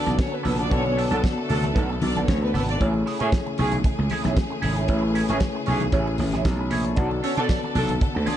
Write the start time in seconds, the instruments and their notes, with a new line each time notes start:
Already playing: string section D3 B3 A4, tine electric piano B3 F#4 A4 D5, violin section D4 D5
0.06 slap bass B1, clean electric guitar B3 D4 A4, snare, closed hi-hat, high conga
0.19 violin section C#4 C#5, kick, snare, closed hi-hat
0.32 violin section B3 B4, muted clean electric guitar stroke
0.43 slap bass A#1, clean electric guitar B3 D4 A4, violin section B3 B4, open hi-hat, low conga
0.58 clean electric guitar B3 D4 A4, violin section D4 D5, closed hi-hat
0.70 slap bass B1, tine electric piano B3 F#4 A4 D5, clean electric guitar B3 D4 A4, violin section C#4 C#5, kick, closed hi-hat, muted conga
0.85 muted clean electric guitar stroke, muted conga
0.97 clean electric guitar B3 D4 A4, open hi-hat
1.11 slap bass B1, horn section F#3 D4 A4, violin section B3 B4, clean electric guitar B3 D4 A4, closed hi-hat
1.24 violin section A3 A4, muted clean electric guitar stroke, kick, snare, closed hi-hat
1.38 muted clean electric guitar stroke
1.49 slap bass D2, horn section F#3 D4 A4, open hi-hat, low conga
1.64 muted clean electric guitar stroke, closed hi-hat, high conga
1.75 slap bass B1, clean electric guitar B3 D4 A4, kick, closed hi-hat, muted conga
1.90 muted clean electric guitar stroke, muted conga
2.02 slap bass B1, violin section D4 D5, muted clean electric guitar stroke, open hi-hat, high conga
2.16 clean electric guitar B3 D4 A4, closed hi-hat, high conga
2.28 slap bass D2, violin section C#4 C#5, muted clean electric guitar stroke, kick, snare, closed hi-hat
2.42 violin section B3 B4, muted clean electric guitar stroke, muted conga
2.54 slap bass G#1, clean electric guitar B3 D4 A4, violin section B3 B4, open hi-hat, low conga
2.68 clean electric guitar B3 D4 A4, violin section D4 D5, closed hi-hat
2.79 slap bass A1, string section C#3 A3 G#4, tine electric piano A3 E4 G#4 C#5, clean electric guitar C#4 E4 G#4, kick, closed hi-hat
2.94 muted clean electric guitar stroke, muted conga
3.06 clean electric guitar C#4 E4 G#4, open hi-hat
3.19 slap bass A2, horn section E3 C#4 G#4, clean electric guitar C#4 E4 G#4, closed hi-hat
3.32 muted clean electric guitar stroke, kick, snare, closed hi-hat, muted conga
3.46 muted clean electric guitar stroke, muted conga
3.58 slap bass B1, horn section E3 C#4 G#4, open hi-hat, low conga
3.72 muted clean electric guitar stroke, closed hi-hat, high conga
3.84 muted clean electric guitar stroke, kick, closed hi-hat, muted conga
3.99 slap bass C#2, muted clean electric guitar stroke, muted conga
4.10 clean electric guitar C#4 E4 G#4, open hi-hat, high conga
4.24 slap bass B1, clean electric guitar C#4 E4 G#4, snare, closed hi-hat, high conga
4.36 muted clean electric guitar stroke, kick, snare, closed hi-hat, muted conga
4.51 muted clean electric guitar stroke, muted conga
4.62 slap bass G#1, clean electric guitar C#4 E4 G#4, open hi-hat, low conga
4.76 clean electric guitar C#4 E4 G#4, closed hi-hat
4.88 slap bass A1, tine electric piano A3 E4 G#4 B4, clean electric guitar C#4 E4 G#4, kick, closed hi-hat, muted conga
4.97 tine electric piano C#5
5.03 muted clean electric guitar stroke
5.15 clean electric guitar C#4 E4 G#4, open hi-hat
5.29 slap bass A1, horn section E3 C#4 G#4, clean electric guitar C#4 E4 G#4, closed hi-hat
5.40 muted clean electric guitar stroke, kick, snare, closed hi-hat
5.55 muted clean electric guitar stroke
5.66 slap bass B1, horn section E3 C#4 G#4, open hi-hat, low conga
5.80 muted clean electric guitar stroke, closed hi-hat, high conga
5.92 slap bass A1, clean electric guitar C#4 E4 G#4, kick, closed hi-hat, muted conga
6.07 muted clean electric guitar stroke, muted conga
6.18 slap bass A1, muted clean electric guitar stroke, open hi-hat, high conga
6.32 clean electric guitar C#4 E4 G#4, snare, closed hi-hat, high conga
6.45 slap bass B1, tine electric piano C#5 A5, kick, snare, closed hi-hat
6.59 tine electric piano B5, muted clean electric guitar stroke
6.71 slap bass A#1, clean electric guitar C#4 E4 G#4, tine electric piano E5 C#6, open hi-hat, low conga
6.84 tine electric piano C#5 A5, muted clean electric guitar stroke, closed hi-hat
6.96 slap bass B1, string section D3 B3 A4, tine electric piano B3 F#4 A4, clean electric guitar D4 F#4 A4, kick, closed hi-hat, muted conga
7.00 tine electric piano D5
7.11 muted clean electric guitar stroke, muted conga
7.23 violin section C#4 C#5, clean electric guitar D4 F#4 A4, open hi-hat
7.37 slap bass B2, horn section F#3 D4 A4, violin section D4 D5, clean electric guitar D4 F#4 A4, closed hi-hat
7.49 muted clean electric guitar stroke, kick, snare, closed hi-hat, muted conga
7.64 muted clean electric guitar stroke, muted conga
7.75 slap bass B1, horn section F#3 D4 A4, open hi-hat, low conga
7.89 muted clean electric guitar stroke, closed hi-hat, high conga
8.01 muted clean electric guitar stroke, kick, closed hi-hat
8.15 slap bass D2, muted clean electric guitar stroke
8.26 clean electric guitar D4 F#4 A4, violin section D4 D5, open hi-hat, high conga